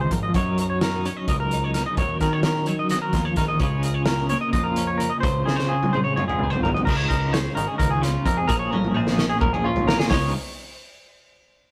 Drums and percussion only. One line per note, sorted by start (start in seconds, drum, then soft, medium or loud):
0.11 kick medium
0.11 closed hi-hat medium
0.34 kick loud
0.34 closed hi-hat medium
0.58 closed hi-hat medium
0.81 snare loud
0.81 closed hi-hat medium
1.05 closed hi-hat medium
1.28 kick loud
1.28 closed hi-hat medium
1.51 closed hi-hat medium
1.74 snare soft
1.74 closed hi-hat medium
1.97 kick loud
1.97 closed hi-hat medium
2.20 kick medium
2.20 snare soft
2.20 closed hi-hat medium
2.43 snare loud
2.43 closed hi-hat medium
2.66 closed hi-hat medium
2.89 snare soft
2.89 closed hi-hat medium
3.13 kick medium
3.13 snare soft
3.13 closed hi-hat medium
3.36 kick medium
3.36 snare soft
3.36 closed hi-hat medium
3.60 kick loud
3.60 closed hi-hat medium
3.83 closed hi-hat medium
4.06 snare loud
4.06 closed hi-hat medium
4.29 closed hi-hat medium
4.53 kick loud
4.53 closed hi-hat medium
4.76 closed hi-hat medium
5.00 closed hi-hat medium
5.23 kick loud
5.23 closed hi-hat medium
5.48 snare medium
5.59 snare soft
5.83 high tom medium
5.94 high tom medium
6.17 mid tom medium
6.29 mid tom medium
6.53 floor tom medium
6.65 floor tom medium
6.77 floor tom medium
6.87 kick loud
6.87 crash loud
7.10 kick medium
7.10 closed hi-hat medium
7.34 snare loud
7.34 closed hi-hat medium
7.57 closed hi-hat medium
7.79 kick loud
7.79 closed hi-hat medium
8.03 snare soft
8.03 closed hi-hat medium
8.26 kick medium
8.26 closed hi-hat medium
8.49 kick loud
8.49 closed hi-hat loud
8.73 high tom medium
8.84 high tom medium
9.07 snare medium
9.18 snare medium
9.41 kick loud
9.41 mid tom medium
9.54 mid tom medium
9.76 floor tom medium
9.89 snare loud
10.00 snare medium
10.11 kick loud
10.11 snare loud
10.11 open hi-hat medium